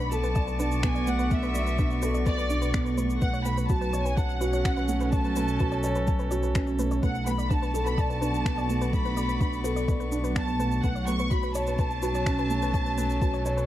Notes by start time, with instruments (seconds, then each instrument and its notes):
Already playing: detuned saw bass B1, felt piano A3 D4, string quartet B3 F#4 C#6, violin section B5
0.00 shaker
0.05 string quartet D5
0.12 felt piano A4, violin section A5, shaker
0.24 synth arpeggio sound B4, shaker
0.35 synth arpeggio sound D5, felt piano D5, kick, shaker
0.47 synth arpeggio sound B4, shaker
0.59 felt piano D4, synth arpeggio sound B4, violin section A5, shaker
0.72 shaker
0.83 felt piano B3, synth arpeggio sound B4, violin section G#5, finger snap, kick, shaker
0.95 synth arpeggio sound D5, shaker
1.07 felt piano A3, synth arpeggio sound B4, violin section F#5, shaker
1.19 synth arpeggio sound B4, shaker
1.31 felt piano A3, violin section E5, kick, shaker
1.43 synth arpeggio sound B4, shaker
1.55 felt piano A3, synth arpeggio sound D5, shaker
1.67 synth arpeggio sound B4, shaker
1.79 felt piano D4, synth arpeggio sound B4, kick, shaker
1.91 shaker
2.02 felt piano A4, synth arpeggio sound B4, shaker
2.14 synth arpeggio sound D5, shaker
2.26 synth arpeggio sound B4, felt piano D5, violin section D5, kick, shaker
2.38 synth arpeggio sound B4, shaker
2.50 felt piano D4, shaker
2.62 synth arpeggio sound B4, shaker
2.74 felt piano B3, synth arpeggio sound D5, finger snap, kick, shaker
2.85 synth arpeggio sound B4, shaker
2.98 felt piano A3, synth arpeggio sound B4, shaker
3.10 shaker
3.21 detuned saw bass B1, string quartet F#3, felt piano A3, synth arpeggio sound B4, violin section F#5, kick, shaker
3.33 synth arpeggio sound C#5, shaker
3.45 felt piano A3, synth arpeggio sound B4, violin section B5, shaker
3.57 synth arpeggio sound B4, shaker
3.63 violin section B5
3.68 felt piano F#4, violin section A5, kick, shaker
3.81 synth arpeggio sound B4, shaker
3.86 string quartet C#4
3.93 synth arpeggio sound C#5, felt piano C#5, shaker
4.04 synth arpeggio sound B4, violin section G#5, shaker
4.16 synth arpeggio sound B4, violin section F#5, felt piano A5, kick, shaker
4.30 shaker
4.41 felt piano F#4, synth arpeggio sound B4, shaker
4.53 string quartet A4, synth arpeggio sound C#5, shaker
4.65 felt piano C#4, synth arpeggio sound B4, finger snap, kick, shaker
4.77 synth arpeggio sound B4, shaker
4.88 felt piano A3, shaker
5.00 synth arpeggio sound B4, shaker
5.12 felt piano A3, synth arpeggio sound C#5, violin section A5, kick, shaker
5.24 synth arpeggio sound B4, shaker
5.36 felt piano A3, synth arpeggio sound B4, shaker
5.48 shaker
5.60 felt piano F#4, synth arpeggio sound B4, kick, shaker
5.72 synth arpeggio sound C#5, shaker
5.83 synth arpeggio sound B4, felt piano C#5, shaker
5.95 synth arpeggio sound B4, shaker
6.07 felt piano A5, kick, shaker
6.19 synth arpeggio sound B4, shaker
6.31 felt piano F#4, synth arpeggio sound C#5, shaker
6.43 synth arpeggio sound B4, shaker
6.55 felt piano C#4, synth arpeggio sound B4, finger snap, kick, shaker
6.67 shaker
6.79 felt piano A3, synth arpeggio sound B4, shaker
6.91 synth arpeggio sound C#5, shaker
7.03 detuned saw bass B1, felt piano A3, string quartet B3, synth arpeggio sound B4, violin section F#5, kick, shaker
7.15 shaker
7.26 felt piano A3, string quartet F#4, synth arpeggio sound B4, violin section B5, shaker
7.38 synth arpeggio sound D5, string quartet D5, shaker
7.50 felt piano D4, synth arpeggio sound B4, violin section A5, string quartet C#6, kick, shaker
7.62 synth arpeggio sound B4, shaker
7.74 felt piano A4, shaker
7.86 synth arpeggio sound B4, violin section B5, shaker
7.98 felt piano D5, synth arpeggio sound D5, violin section A5, kick, shaker
8.09 synth arpeggio sound B4, shaker
8.21 felt piano D4, synth arpeggio sound B4, shaker
8.34 shaker
8.45 felt piano B3, synth arpeggio sound B4, finger snap, kick, shaker
8.58 synth arpeggio sound D5, shaker
8.69 felt piano A3, synth arpeggio sound B4, shaker
8.81 synth arpeggio sound B4, shaker
8.93 felt piano A3, violin section B5, kick, shaker
9.05 synth arpeggio sound B4, shaker
9.17 felt piano A3, synth arpeggio sound D5, shaker
9.29 synth arpeggio sound B4, shaker
9.40 felt piano D4, synth arpeggio sound B4, kick, shaker
9.53 shaker
9.64 felt piano A4, synth arpeggio sound B4, shaker
9.76 synth arpeggio sound D5, shaker
9.88 synth arpeggio sound B4, felt piano D5, kick, shaker
10.00 synth arpeggio sound B4, shaker
10.12 felt piano D4, shaker
10.24 synth arpeggio sound B4, shaker
10.35 felt piano B3, synth arpeggio sound D5, violin section A5, finger snap, kick, shaker
10.48 synth arpeggio sound B4, shaker
10.59 felt piano A3, synth arpeggio sound B4, shaker
10.72 shaker
10.83 detuned saw bass B1, string quartet F#3, felt piano A3, synth arpeggio sound B4, violin section F#5, kick, shaker
10.95 synth arpeggio sound C#5, shaker
11.07 felt piano A3, synth arpeggio sound B4, violin section C#6, shaker
11.19 synth arpeggio sound B4, shaker
11.31 felt piano F#4, violin section B5, kick, shaker
11.41 string quartet C#4, synth arpeggio sound B4, shaker
11.55 felt piano C#5, synth arpeggio sound C#5, violin section A5, shaker
11.67 synth arpeggio sound B4, shaker
11.79 synth arpeggio sound B4, felt piano A5, kick, shaker
11.91 shaker
12.02 felt piano F#4, synth arpeggio sound B4, shaker
12.15 synth arpeggio sound C#5, shaker
12.26 felt piano C#4, synth arpeggio sound B4, finger snap, kick, shaker
12.38 synth arpeggio sound B4, shaker
12.50 felt piano A3, shaker
12.54 string quartet A4
12.62 synth arpeggio sound B4, shaker
12.74 synth arpeggio sound C#5, kick, shaker
12.86 synth arpeggio sound B4, shaker
12.98 felt piano A3, synth arpeggio sound B4, shaker
13.10 shaker
13.22 felt piano F#4, synth arpeggio sound B4, kick, shaker
13.34 synth arpeggio sound C#5, shaker
13.46 synth arpeggio sound B4, felt piano C#5, shaker
13.57 synth arpeggio sound B4, shaker